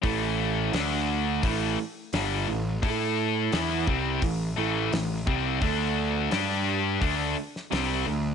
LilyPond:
<<
  \new Staff \with { instrumentName = "Distorted electric guitar" } { \clef bass \time 4/4 \key d \major \tempo 4 = 86 <a, e a>4 <d a d'>4 <a, e a>8 r8 <g, d g>8 <a, e>8 | <a e' a'>4 <e b e'>8 <c g c'>8 <a, e>8 <a, e a>8 <a, e>8 <c g c'>8 | <d a d'>4 <g d' g'>4 <d a d'>8 r8 <c g c'>8 <d a>8 | }
  \new Staff \with { instrumentName = "Overdriven electric guitar" } { \clef bass \time 4/4 \key d \major <a, e a>4 <d a d'>4 <a, e a>8 r8 <g, d g>8 <a, e>8 | <a e' a'>4 <e b e'>8 <c g c'>8 <a, e>8 <a, e a>8 <a, e>8 <c g c'>8 | <d a d'>4 <g d' g'>4 <d a d'>8 r8 <c g c'>8 <d a>8 | }
  \new Staff \with { instrumentName = "Picked electric bass" } { \clef bass \time 4/4 \key d \major a,,4 d,4 a,,8 r8 g,,8 a,,8 | a,4 e,8 c,8 a,,8 a,,8 a,,8 c,8 | d,4 g,4 d,8 r8 c,8 d,8 | }
  \new DrumStaff \with { instrumentName = "Drums" } \drummode { \time 4/4 <hho bd>4 <hho sn>4 <hho bd>4 <hho sn>4 | <hho bd>4 <hho sn>8 bd8 <hho bd>4 <hho sn>8 bd8 | <hho bd>4 <hho sn>4 <hho bd>8. sn16 <hho sn>4 | }
>>